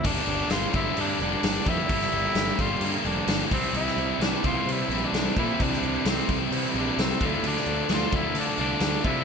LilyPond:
<<
  \new Staff \with { instrumentName = "Tenor saxophone" } { \time 4/4 \key g \dorian \tempo 4 = 130 d'4 f'8 e'8 d'8 d'4 e'8~ | e'4. f'4 d'4 c'8 | e'4 d'8 f'8 e'8. d'8. e'8 | d'4 c'8 r4 d'8 c'8 e'8 |
d'4 f'8 e'8 d'8 d'4 e'8 | }
  \new Staff \with { instrumentName = "Tonewheel organ" } { \time 4/4 \key g \dorian <g bes d' g'>1~ | <g bes d' g'>2.~ <g bes d' g'>8 <g c' e' g'>8~ | <g c' e' g'>1~ | <g c' e' g'>2.~ <g c' e' g'>8 <f a d' a'>8~ |
<f a d' a'>1 | }
  \new Staff \with { instrumentName = "Overdriven electric guitar" } { \time 4/4 \key g \dorian <g bes d' g'>4. <g bes d' g'>4. <g bes d' g'>4 | <g bes d' g'>4. <g bes d' g'>4. <g bes d' g'>8 <c e g c' e'>8~ | <c e g c' e'>4 <c e g c' e'>4. <c e g c' e'>4 <c e g c' e'>8~ | <c e g c' e'>4 <c e g c' e'>4. <c e g c' e'>4 <d a d' f'>8~ |
<d a d' f'>4 <d a d' f'>4. <d a d' f'>4 <d a d' f'>8 | }
  \new Staff \with { instrumentName = "Distorted electric guitar" } { \time 4/4 \key g \dorian <g, d g bes d' g'>1 | <g, d g bes d' g'>2.~ <g, d g bes d' g'>8 <c e g c' e'>8~ | <c e g c' e'>2.~ <c e g c' e'>8 <c e g c' e'>8~ | <c e g c' e'>2.~ <c e g c' e'>8 <d a d' f'>8~ |
<d a d' f'>2.~ <d a d' f'>8 <d a d' f'>8 | }
  \new Staff \with { instrumentName = "Picked electric bass" } { \clef bass \time 4/4 \key g \dorian g,,8 g,,8 g,,8 g,,8 g,8 f,,8 g,,8 f,8 | g,,8 g,,8 g,,8 g,,8 g,8 f,,8 g,,8 c,8 | c,8 c,8 c,8 c,8 c8 bes,,8 c,8 bes,8 | c,8 c,8 c,8 c,8 c8 bes,,8 c,8 d,8 |
d,8 d,8 d,8 d,8 d8 c,8 d,8 c8 | }
  \new DrumStaff \with { instrumentName = "Drums" } \drummode { \time 4/4 <cymc bd>8 cymc8 <cymc sn>8 <cymc bd>8 cymc8 cymc8 <cymc sn>8 <cymc bd>8 | <cymc bd>16 sn16 cymc8 <cymc sn>8 <cymc bd>8 cymc8 cymc8 <cymc sn>8 <cymc bd>8 | cymc16 sn16 cymc8 <cymc sn>8 <cymc bd>8 cymc8 cymc8 <cymc sn>8 <cymc bd>8 | <cymc bd>16 sn16 cymc8 <cymc sn>8 <cymc bd>8 cymc8 cymc8 <cymc sn>8 <cymc bd>8 |
cymc16 sn16 cymc8 <cymc sn>8 <cymc bd>8 cymc8 cymc8 <cymc sn>8 <cymc bd>8 | }
>>